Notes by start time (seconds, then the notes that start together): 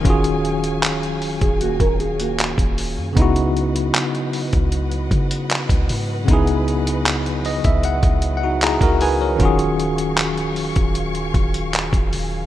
Already playing: F#3 C#5 F5 G#5
0.01 D#1 D#3 C#4, kick
0.05 F4 F#4, closed hi-hat
0.10 G#4
0.24 closed hi-hat
0.45 closed hi-hat
0.64 closed hi-hat
0.83 C#1, clap, closed hi-hat
1.03 closed hi-hat
1.22 open hi-hat
1.41 D#1 G#4, kick, closed hi-hat
1.60 A#3 F#4, closed hi-hat
1.80 D#1 C#4 A#4, kick, closed hi-hat
2.00 G#4, closed hi-hat
2.19 A#3 F#4, closed hi-hat
2.39 clap, closed hi-hat
2.58 D#1, kick, closed hi-hat
2.78 open hi-hat
2.97 F#2
3.13 C#2 C#3 F#3 B3 B4 D#5 F#5, kick, closed hi-hat
3.17 D#4 E4
3.22 F#4
3.36 closed hi-hat
3.57 closed hi-hat
3.76 closed hi-hat
3.94 clap, closed hi-hat
4.15 closed hi-hat
4.33 open hi-hat
4.53 C#2, kick, closed hi-hat
4.72 closed hi-hat
4.91 closed hi-hat
5.11 C#3, kick, closed hi-hat
5.31 closed hi-hat
5.50 clap, closed hi-hat
5.69 C#2, kick, closed hi-hat
5.89 G#2, open hi-hat
6.24 C#2 C#3 B3, kick, closed hi-hat
6.29 D#4 E4
6.33 G#4
6.47 closed hi-hat
6.68 closed hi-hat
6.87 closed hi-hat
7.06 clap, closed hi-hat
7.26 closed hi-hat
7.45 D#5, open hi-hat
7.64 C#2 E5, kick, closed hi-hat
7.83 F#5, closed hi-hat
8.03 C#2, kick, closed hi-hat
8.22 closed hi-hat
8.37 F#5
8.43 D#4 F#4
8.62 E4 G#4 A#5, clap, closed hi-hat
8.81 C#2 F#4 A#4, kick, closed hi-hat
9.01 G#4 B4 G#5, open hi-hat
9.21 A#4 C#5
9.36 D#1 D#3 C#4 F5 G#5 C#6, kick, closed hi-hat
9.41 F4 F#4
9.45 G#4
9.59 closed hi-hat
9.80 closed hi-hat
9.98 closed hi-hat
10.17 clap, closed hi-hat
10.38 closed hi-hat
10.56 open hi-hat
10.76 D#1, kick, closed hi-hat
10.95 closed hi-hat
11.15 closed hi-hat
11.34 D#1, kick, closed hi-hat
11.54 closed hi-hat
11.74 clap, closed hi-hat
11.93 D#1, kick, closed hi-hat
12.13 D#1, open hi-hat